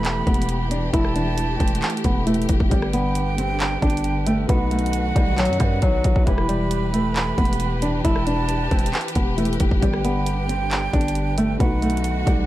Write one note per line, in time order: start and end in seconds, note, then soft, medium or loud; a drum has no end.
0.00 0.23 E1 loud
0.00 2.22 E3 medium
0.00 2.68 E3 medium
0.00 0.24 A3 medium
0.00 0.92 B3 medium
0.00 2.22 E4 medium
0.00 2.23 G4 medium
0.00 4.45 G4 medium
0.00 2.24 B4 medium
0.00 0.89 B5 loud
0.05 clap loud
0.05 closed hi-hat medium
0.27 0.91 E1 loud
0.27 0.69 B3 medium
0.27 kick loud
0.27 closed hi-hat soft
0.34 closed hi-hat medium
0.42 closed hi-hat medium
0.49 closed hi-hat medium
0.71 0.90 D4 medium
0.71 closed hi-hat medium
0.93 1.58 E1 loud
0.93 2.70 A3 medium
0.93 1.12 E4 loud
0.93 2.23 A5 loud
0.93 kick loud
0.93 closed hi-hat medium
1.05 cross-stick medium
1.16 1.58 D4 medium
1.16 closed hi-hat medium
1.38 closed hi-hat medium
1.60 1.82 E1 loud
1.60 1.79 C4 medium
1.60 kick medium
1.60 closed hi-hat soft
1.68 closed hi-hat medium
1.75 closed hi-hat medium
1.82 clap loud
1.82 closed hi-hat soft
1.90 closed hi-hat medium
1.97 closed hi-hat medium
2.04 2.47 E1 loud
2.04 2.23 B3 medium
2.04 kick medium
2.04 closed hi-hat medium
2.26 2.71 E3 medium
2.26 2.45 A3 medium
2.26 2.71 E4 soft
2.26 2.69 G4 soft
2.26 2.70 B4 medium
2.26 closed hi-hat medium
2.34 closed hi-hat medium
2.42 closed hi-hat medium
2.49 2.60 E1 loud
2.49 kick loud
2.49 closed hi-hat medium
2.60 2.71 E1 loud
2.60 kick loud
2.69 3.78 G1 loud
2.69 4.47 D3 medium
2.69 4.44 G3 medium
2.69 2.90 G3 loud
2.69 4.45 G4 medium
2.69 12.46 B4 medium
2.69 4.46 B4 medium
2.69 4.45 G5 loud
2.69 kick loud
2.69 closed hi-hat medium
2.74 4.47 D5 medium
2.82 cross-stick loud
2.93 3.35 B3 medium
2.93 closed hi-hat medium
3.15 closed hi-hat medium
3.38 3.80 C4 medium
3.38 closed hi-hat medium
3.60 clap loud
3.60 closed hi-hat medium
3.82 4.46 G1 loud
3.82 4.24 D4 medium
3.82 kick loud
3.82 closed hi-hat soft
3.90 closed hi-hat medium
3.97 closed hi-hat medium
4.04 closed hi-hat medium
4.27 4.45 A3 medium
4.27 closed hi-hat medium
4.46 5.13 B1 loud
4.46 6.22 B2 medium
4.46 6.25 D#3 medium
4.46 6.23 B3 medium
4.46 4.68 B3 medium
4.46 6.24 D#4 medium
4.46 6.25 F#4 medium
4.46 6.23 F#5 loud
4.46 kick loud
4.46 closed hi-hat medium
4.51 6.24 F#4 medium
4.71 5.13 A3 medium
4.71 closed hi-hat medium
4.79 closed hi-hat medium
4.86 closed hi-hat medium
4.93 closed hi-hat medium
5.16 5.51 B1 loud
5.16 5.34 G3 medium
5.16 kick medium
5.16 closed hi-hat medium
5.38 5.57 F#3 medium
5.38 clap loud
5.38 closed hi-hat medium
5.45 5.60 F#2 loud
5.45 closed hi-hat medium
5.53 closed hi-hat soft
5.60 5.82 F#2 loud
5.60 5.79 G3 medium
5.60 kick loud
5.60 cross-stick medium
5.60 closed hi-hat medium
5.82 6.04 B1 loud
5.82 6.24 F#3 medium
5.82 kick loud
5.82 closed hi-hat medium
6.04 6.15 B1 loud
6.04 kick medium
6.04 closed hi-hat medium
6.16 6.26 B1 loud
6.16 kick loud
6.24 7.34 E1 loud
6.24 9.33 E3 medium
6.24 9.79 E3 medium
6.24 6.45 E3 medium
6.24 9.34 E4 medium
6.24 11.56 G4 medium
6.24 9.34 G4 medium
6.24 8.01 B5 loud
6.24 kick loud
6.24 closed hi-hat medium
6.29 9.35 B4 medium
6.38 cross-stick medium
6.49 6.91 G3 medium
6.49 closed hi-hat medium
6.71 closed hi-hat medium
6.93 7.35 A3 medium
6.93 closed hi-hat medium
7.16 clap loud
7.16 closed hi-hat medium
7.38 8.02 E1 loud
7.38 7.80 B3 medium
7.38 kick loud
7.38 closed hi-hat soft
7.45 closed hi-hat medium
7.53 closed hi-hat medium
7.60 closed hi-hat medium
7.82 8.01 D4 medium
7.82 closed hi-hat medium
8.04 8.69 E1 loud
8.04 8.23 E4 loud
8.04 9.34 A5 loud
8.04 kick loud
8.04 closed hi-hat medium
8.16 cross-stick medium
8.27 8.69 D4 medium
8.27 closed hi-hat medium
8.49 closed hi-hat medium
8.71 8.93 E1 loud
8.71 8.90 C4 medium
8.71 kick loud
8.71 closed hi-hat soft
8.79 closed hi-hat medium
8.86 closed hi-hat medium
8.93 clap loud
8.93 closed hi-hat soft
9.01 closed hi-hat medium
9.08 closed hi-hat medium
9.15 9.58 E1 loud
9.15 9.34 B3 medium
9.15 kick medium
9.15 closed hi-hat medium
9.37 9.82 E3 medium
9.37 9.56 A3 medium
9.37 9.82 E4 soft
9.37 9.80 G4 soft
9.37 9.82 B4 medium
9.37 closed hi-hat medium
9.45 closed hi-hat medium
9.53 closed hi-hat medium
9.60 9.71 E1 loud
9.60 kick medium
9.60 closed hi-hat medium
9.71 9.82 E1 loud
9.71 kick loud
9.80 10.90 G1 loud
9.80 11.58 D3 medium
9.80 11.55 G3 medium
9.80 10.01 G3 loud
9.80 11.56 G4 medium
9.80 11.57 B4 medium
9.80 11.56 G5 loud
9.80 kick loud
9.80 closed hi-hat medium
9.85 11.58 D5 medium
9.93 cross-stick loud
10.05 10.46 B3 medium
10.05 closed hi-hat medium
10.26 closed hi-hat medium
10.49 10.91 C4 medium
10.49 closed hi-hat medium
10.71 clap loud
10.71 closed hi-hat medium
10.93 11.58 G1 loud
10.93 11.35 D4 medium
10.93 kick loud
10.93 closed hi-hat soft
11.01 closed hi-hat medium
11.08 closed hi-hat medium
11.15 closed hi-hat medium
11.38 11.56 A3 medium
11.38 closed hi-hat medium
11.57 12.24 B1 loud
11.57 12.46 B2 medium
11.57 12.46 D#3 medium
11.57 12.46 B3 medium
11.57 11.79 B3 medium
11.57 12.46 D#4 medium
11.57 12.46 F#4 medium
11.57 12.46 F#5 loud
11.57 kick loud
11.57 closed hi-hat medium
11.62 12.46 F#4 medium
11.82 12.24 A3 medium
11.82 closed hi-hat medium
11.90 closed hi-hat medium
11.97 closed hi-hat medium
12.04 closed hi-hat medium
12.27 12.46 B1 loud
12.27 12.45 G3 medium
12.27 kick medium
12.27 closed hi-hat medium